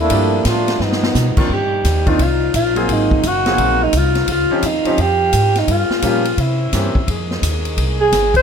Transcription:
0.00 trombone section A3 A#3 D4 E4
0.10 upright bass G2, grand piano F3 A3 A#3 D4 G4, kick, ride
0.45 upright bass A2, trombone section G3 A3 D4 F4, kick, snare, hi-hat pedal, ride
0.68 snare, ride
0.79 upright bass G2, trombone section F3 G3 B3 D#4, snare
0.92 snare
1.03 snare
1.15 upright bass B2, snare, hi-hat pedal
1.37 grand piano D#3 A#3 C4 D4 F4, muted upright bass stroke, kick, crash
1.48 upright bass G2, saxophone section F3 A#3 D4 D#4, kick
1.53 alto saxophone G4
1.84 upright bass D#2, kick, snare, hi-hat pedal, ride
2.06 grand piano D#3 A#3 C4 D4 F4, alto saxophone D#4, kick, ride
2.19 upright bass C2, alto saxophone F4, kick, ride
2.54 upright bass A#1, alto saxophone F4, kick, hi-hat pedal, ride
2.75 grand piano F#3 A#3 C4 F4 G#4, ride
2.89 upright bass G#1, saxophone section C3 F#3 D#4, alto saxophone D#4, kick, ride
3.11 kick
3.23 upright bass F#1, alto saxophone F#4, kick, hi-hat pedal, ride
3.46 grand piano F#3 A#3 C4 G#4 F5, snare, ride
3.58 upright bass A#1, kick, ride
3.83 alto saxophone D#4
3.93 upright bass C2, kick, hi-hat pedal, ride
3.98 alto saxophone F4
4.15 snare, ride
4.28 upright bass C#2, saxophone section D#3 G3 C4 F4, kick, ride
4.32 alto saxophone F4
4.51 grand piano F3 C4 C#4 D#4 G4
4.62 upright bass D#2, alto saxophone D#4, kick, hi-hat pedal, ride
4.85 grand piano F3 C4 C#4 D#4 G4, muted upright bass stroke, ride
4.98 upright bass F2, alto saxophone G4, kick, ride
5.33 upright bass G#2, kick, hi-hat pedal, ride
5.55 alto saxophone D#4, snare, ride
5.67 upright bass G2, saxophone section C#3 A#3 F4, kick, ride
5.71 alto saxophone F4
5.90 muted upright bass stroke, snare
6.02 upright bass A#2, grand piano F3 G3 A#3 C#4 G4, alto saxophone F4, kick, hi-hat pedal, ride
6.25 ride
6.38 upright bass C3, saxophone section A#3 C4 C#4 E4, alto saxophone E4, kick, ride
6.73 upright bass G2, grand piano E3 A#3 C4 C#4 G4, kick, snare, hi-hat pedal, ride
6.95 kick
7.08 upright bass F2, saxophone section D#3 G#3 A#3 G#4, kick, ride
7.31 snare
7.42 upright bass D#2, kick, hi-hat pedal, ride
7.65 ride
7.77 upright bass C2, kick, ride
8.01 alto saxophone G#4
8.12 upright bass G1, kick, snare, hi-hat pedal, ride
8.34 alto saxophone C5, kick, ride

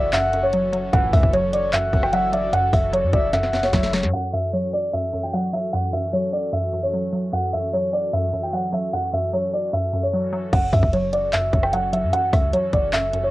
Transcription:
Already playing: 808-style bass F#1, synth pluck F#2 F#3, analog synth pad E3 C#4 F#4 A4, soft synth lead E5
0.13 synth pluck F#2, felt piano E5, soft synth lead F#5, clap, closed hi-hat
0.33 synth pluck F#2, closed hi-hat
0.43 felt piano C#5
0.53 synth pluck F#3, closed hi-hat
0.73 synth pluck F#3, closed hi-hat
0.93 808-style bass F#1, analog polysynth C#2 A2 E3, synth pluck F#2, analog synth pad E3 F#4 A4, felt piano F#5, kick, closed hi-hat
1.13 808-style bass C#2, synth pluck F#2, felt piano E5, kick, open hi-hat
1.23 808-style bass F#1, kick
1.33 synth pluck F#3, felt piano C#5, closed hi-hat
1.53 soft synth lead C#5, felt piano D5, closed hi-hat
1.73 synth pluck F#2, felt piano E5, soft synth lead F#5, clap, closed hi-hat
1.93 808-style bass F#1, synth pluck F#2, kick, closed hi-hat
2.03 felt piano G5, cross-stick
2.13 synth pluck F#3, soft synth lead E5, felt piano F#5, closed hi-hat
2.33 synth pluck F#3, soft synth lead D5, felt piano E5, closed hi-hat
2.53 synth pluck F#2, felt piano F#5, closed hi-hat
2.73 808-style bass F#1, synth pluck F#2, felt piano E5, kick, open hi-hat
2.93 synth pluck F#3, felt piano C#5, closed hi-hat
3.03 808-style bass F#2
3.13 808-style bass F#1, felt piano D5, soft synth lead E5, kick, closed hi-hat
3.33 synth pluck F#2, felt piano E5, soft synth lead F#5, snare, closed hi-hat
3.43 808-style bass E1, snare
3.53 synth pluck F#2, snare, closed hi-hat
3.58 808-style bass F#1
3.63 felt piano C#5, snare
3.73 808-style bass F#1, synth pluck F#3, soft synth lead E5, kick, snare, closed hi-hat
3.83 snare
3.93 synth pluck F#3, soft synth lead C#5, snare, closed hi-hat
4.03 808-style bass F#2, snare
4.13 synth pluck F#2, analog synth pad E3 C#4 F#4 A4, felt piano F#5
4.33 synth pluck F#2, felt piano E5
4.53 synth pluck F#3, felt piano C#5
4.73 felt piano D5
4.93 synth pluck F#2, felt piano E5
5.13 synth pluck F#2
5.23 felt piano G5
5.33 synth pluck F#3, felt piano F#5
5.53 synth pluck F#3, felt piano E5
5.73 synth pluck F#2, felt piano F#5
5.93 synth pluck F#2, felt piano E5
6.13 synth pluck F#3, felt piano C#5
6.33 felt piano D5
6.53 synth pluck F#2, felt piano E5
6.73 synth pluck F#2
6.83 felt piano C#5
6.93 synth pluck F#3
7.13 synth pluck F#3
7.33 synth pluck F#2, felt piano F#5
7.53 synth pluck F#2, felt piano E5
7.73 synth pluck F#3, felt piano C#5
7.93 felt piano D5
8.13 synth pluck F#2, felt piano E5
8.33 synth pluck F#2
8.43 felt piano G5
8.53 synth pluck F#3, felt piano F#5
8.73 synth pluck F#3, felt piano E5
8.93 synth pluck F#2, felt piano F#5
9.13 synth pluck F#2, felt piano E5
9.33 synth pluck F#3, felt piano C#5
9.53 felt piano D5
9.73 synth pluck F#2, felt piano E5
9.93 synth pluck F#2
10.03 felt piano C#5
10.14 synth pluck F#3
10.33 synth pluck F#3
10.53 808-style bass F#1, synth pluck F#2, analog synth pad E3 C#4 F#4 A4, felt piano F#5, kick, closed hi-hat, crash
10.73 808-style bass F#2, synth pluck F#2, felt piano E5, kick, open hi-hat
10.83 808-style bass F#1, kick
10.93 synth pluck F#3, felt piano C#5, closed hi-hat
11.13 felt piano D5, closed hi-hat
11.33 synth pluck F#2, felt piano E5, clap, closed hi-hat
11.53 808-style bass F#1, synth pluck F#2, kick, closed hi-hat
11.63 felt piano G5, cross-stick
11.73 synth pluck F#3, felt piano F#5, closed hi-hat
11.93 synth pluck F#3, felt piano E5, closed hi-hat
12.03 808-style bass F#2
12.13 synth pluck F#2, felt piano F#5, closed hi-hat
12.33 808-style bass C#2, synth pluck F#2, felt piano E5, kick, cross-stick, open hi-hat
12.53 synth pluck F#3, felt piano C#5, closed hi-hat
12.73 808-style bass F#1, felt piano D5, kick, closed hi-hat
12.93 synth pluck F#2, felt piano E5, clap, closed hi-hat
13.13 synth pluck F#2, closed hi-hat
13.23 felt piano C#5

